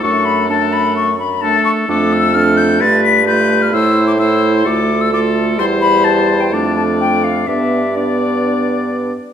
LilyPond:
<<
  \new Staff \with { instrumentName = "Flute" } { \time 4/4 \key d \major \tempo 4 = 129 cis'''8 b''8 a''8 b''8 cis'''8 b''8 a''8 cis'''8 | \key d \dorian d'''8 e'''8 f'''8 g'''8 a'''8 b'''8 g'''8. f'''16 | e'''8. d'''16 e'''8. c'''16 d'''8. e'''16 d'''8 r8 | c'''8 b''8 a''8. g''16 a''8 a''8 g''8 f''8 |
e''4 d''2~ d''8 r8 | }
  \new Staff \with { instrumentName = "Oboe" } { \time 4/4 \key d \major a'4 a'4. r8 a'4 | \key d \dorian a'4 a'4 b'4 b'4 | c''4 c''4 a'4 a'4 | c''2 d''2 |
d''4 d''2~ d''8 r8 | }
  \new Staff \with { instrumentName = "Clarinet" } { \time 4/4 \key d \major d'4 d'4. r8 d'4 | \key d \dorian d'4 d'4 f'4 f'4 | e'4 e'4 f'4 f'4 | e'2 d'2 |
d'4 d'2~ d'8 r8 | }
  \new Staff \with { instrumentName = "French horn" } { \time 4/4 \key d \major a4 a4. r8 a4 | \key d \dorian a4 a4 a4 a4 | a4 a4 a4 a4 | g2 a2 |
b4 b2~ b8 r8 | }
  \new Staff \with { instrumentName = "Bassoon" } { \clef bass \time 4/4 \key d \major fis,2.~ fis,8 r8 | \key d \dorian f,2 g,2 | a,2 d,2 | e,2 f,2 |
g,2.~ g,8 r8 | }
>>